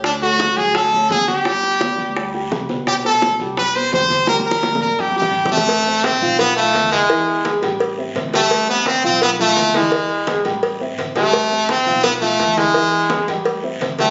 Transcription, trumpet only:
X:1
M:4/4
L:1/8
Q:1/4=170
K:Am
V:1 name="Trumpet"
D ^F2 ^G A2 G =G- | G4- G z3 | G A2 z B c c2 | _B B2 B G G2 A,- |
A,2 C2 B, A,2 ^G,- | ^G,3 z4 A,- | A, B, C C B, A,2 ^G,- | ^G,3 z4 A,- |
A,2 C2 B, A,2 ^G,- | ^G,3 z4 A, |]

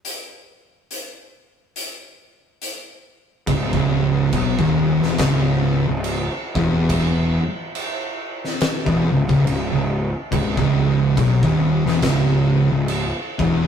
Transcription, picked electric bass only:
X:1
M:4/4
L:1/16
Q:"Swing" 1/4=70
K:C#m
V:1 name="Picked electric bass" clef=bass
z16 | C,,, C,,,3 B,,, D,,,2 E,,, C,,,3 C,,,2 z E,,,2- | E,,,2 z6 z E,,, C,,, C,,, C,,, C,,,2 z | C,,, C,,,3 B,,, D,,,2 E,,, C,,,3 C,,,2 z E,,,2 |]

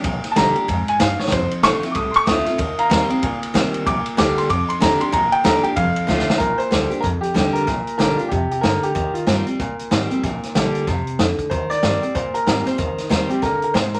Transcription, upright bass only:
X:1
M:4/4
L:1/8
Q:"Swing" 1/4=188
K:Bb
V:1 name="Upright bass" clef=bass
B,,, z B,,, z F,, z G,, z | F,,, z A,,, z C,, z D,, z | E,, z E,, z B,, z C, z | B,,, z D,, z F,, z E,, z |
B,,, z E,, z F,,, z D,, z | B,,, z D,, z F,, z E,, z | B,,, z B,,, z F,, z G,, z | E,, z G,, z B,, z _A,, z |
B,,, z B,,, z F,, z F,, z | E,, z G,, z B,, z _A,, z | E,, z E,, z B,, z C, z |]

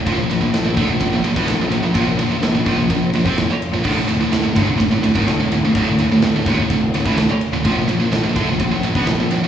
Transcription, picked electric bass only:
X:1
M:4/4
L:1/16
Q:1/4=126
K:Bblyd
V:1 name="Picked electric bass" clef=bass
B,,, B,,, B,,, B,,, B,,, B,,, D,, B,,, B,,, B,,, B,,, E,, B,,, B,,, B,,, B,,, | B,,, B,,, B,,, B,,, B,,, B,,, B,,, B,,, B,,,2 B,,, F,, B,,, z2 B,,, | D,,, D,,, D,,, D,,, D,,, D,,, G,,, D,,, D,,, D,,, D,,, ^G,,, D,,, D,,, D,,, D,,, | D,,, D,,, D,,, D,,, D,,, D,,, _E,,, D,,, D,,,2 D,,, A,,, D,,, z2 D,,, |
B,,, B,,, B,,, B,,, B,,, B,,, D,, B,,, B,,, B,,, B,,, E,, B,,, B,,, B,,, B,,, |]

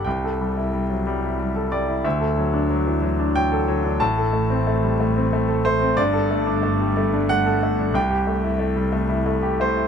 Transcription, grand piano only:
X:1
M:3/4
L:1/16
Q:1/4=91
K:Clyd
V:1 name="Grand piano"
g8- g2 d2 | e8 g4 | a8- a2 c2 | d8 f4 |
g8- g2 c2 |]
V:2 name="Grand piano"
C,, A G, E G, F, G, E G, A G, E | D,, A F, D F, E, F, D F, A F, D | A,, A A, C A, G, A, C A, A A, C | G,, A A, D A, G, A, D A, A A, D |
C,, G A, E A, G, A, E A, G A, E |]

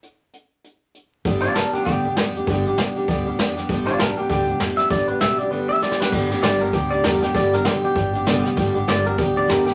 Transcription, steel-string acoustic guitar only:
X:1
M:4/4
L:1/8
Q:"Swing" 1/4=197
K:Gmix
V:1 name="Steel-string acoustic guitar"
z8 | [G,,D,G,B,DG] [G,B,DG] [G,B,DG] [G,B,DG] [G,,D,G,B,DG] [G,B,DG] [G,B,DG] [G,B,DG] | [G,,D,G,B,DG] [G,B,DG] [G,B,DG] [G,B,DG] [G,,D,G,B,DG] [G,B,DG] [G,B,DG] [G,B,DG] | [G,,D,G,B,DG] [G,B,DG] [G,DG] [G,B,DG] [G,,D,G,B,DG] [G,B,DG] [G,B,DG] [G,B,DG] |
[G,,D,G,B,DG] [G,B,DG] [G,B,DG] [G,B,DG] [G,,D,G,B,DG] [G,B,DG] [G,B,DG] [G,B,DG] | [G,,D,G,B,DG] [G,B,DG] [G,,D,G,B,DG] [G,B,DG] [G,B,DG] [G,B,DG] [G,,D,G,B,DG] [G,B,DG] | [G,,D,G,B,DG] [G,B,DG] [G,,D,G,B,DG] [G,B,DG] [G,B,DG] [G,B,DG] [G,,D,G,B,DG] [G,B,DG] | [G,,D,G,B,DG] [G,B,DG] [G,,D,G,B,DG] [G,B,DG] [G,B,DG] [G,B,DG] [G,,D,G,B,DG] [G,B,DG] |]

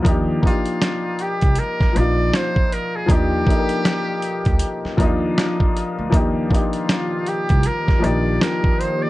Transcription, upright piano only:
X:1
M:4/4
L:1/8
Q:"Swing 16ths" 1/4=79
K:Eb
V:1 name="Upright piano"
[F,B,DEG] [F,B,DEG]3 z [F,B,DEF]2 z | [F,B,DEG] [F,B,DE=AB]3 z [F,B,DEF]2 z | [F,B,DEG] [F,B,DEG]3 z [F,B,DEG]2 z |]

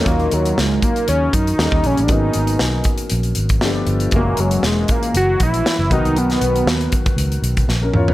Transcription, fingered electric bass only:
X:1
M:4/4
L:1/16
Q:"Swing 16ths" 1/4=118
K:Ebm
V:1 name="Fingered electric bass" clef=bass
E,,2 E,,2 D,,2 z2 E,,2 G,,2 E,, E,, B,,, =A,,, | A,,,2 A,,,2 C,,2 z2 B,,,2 A,,,2 =G,,,2 G,,,2 | G,,,2 G,,,2 _F,,,2 z2 G,,,2 B,,,2 z G,,, =B,,, =C,, | =B,,,2 B,,,2 ^D,,2 z2 _D,,2 B,,,2 ^A,,,2 _F,,2 |]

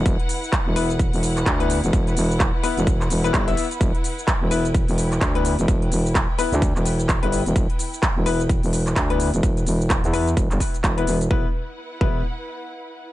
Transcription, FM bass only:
X:1
M:4/4
L:1/16
Q:"Swing 16ths" 1/4=128
K:Em
V:1 name="FM bass" clef=bass
z4 z E,,,4 E,,,3 D,,3 E,,, | z2 E,,,3 z2 E,,,3 E,,,2 G,,,2 z2 | E,,, z4 E,,,4 E,,,3 D,,3 E,,, | E,,,2 E,,,3 z2 D,,2 E,,,4 G,,,2 E,,, |
z4 z E,,,4 E,,,3 D,,3 E,,, | z2 E,,,3 E,,3 E,,, G,,, z2 E,,,2 E,,,2 | E,,, z4 z E,,,2 z8 |]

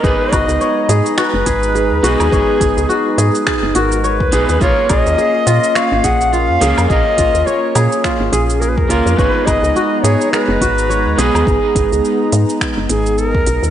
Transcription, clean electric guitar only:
X:1
M:4/4
L:1/8
Q:"Swing 16ths" 1/4=105
K:G#dor
V:1 name="Clean electric guitar"
[B,DGB]6- [B,DGB] [B,DGB] | [B,DGB]6- [B,DGB] [B,DGB] | [A,CEA]6- [A,CEA] [A,CEA] | [A,CEA]6- [A,CEA] [A,CEA] |
[B,DGB]6- [B,DGB] [B,DGB] | z8 |]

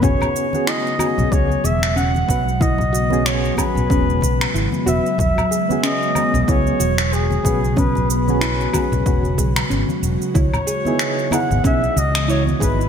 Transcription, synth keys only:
X:1
M:4/4
L:1/16
Q:"Swing 16ths" 1/4=93
K:E
V:1 name="Synth keys"
[B,CFG]3 [B,CFG]3 [B,CFG]2 [B,CFG]2 z4 [B,CFB] z | z3 [B,CFG]3 [B,CFG]2 [B,CFG]2 z4 [B,CFB] z | z3 [B,CFG]3 [B,CFG]2 [B,CFG]2 z4 [B,CFB] z | z3 [B,CFG]3 [B,CFG]2 [B,CFG]2 z6 |
z3 [B,DEG]3 [B,DEG]2 [B,DEG]2 z4 [B,DEB] z |]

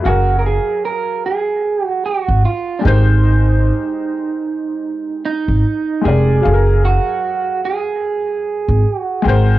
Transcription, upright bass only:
X:1
M:4/4
L:1/16
Q:"Swing 16ths" 1/4=75
K:F#
V:1 name="Upright bass" clef=bass
F,,,3 z8 G,,, z2 G,,,2- | G,,,3 z8 G,,, z2 E,,,2 | F,,,3 z8 G,,, z2 G,,,2 |]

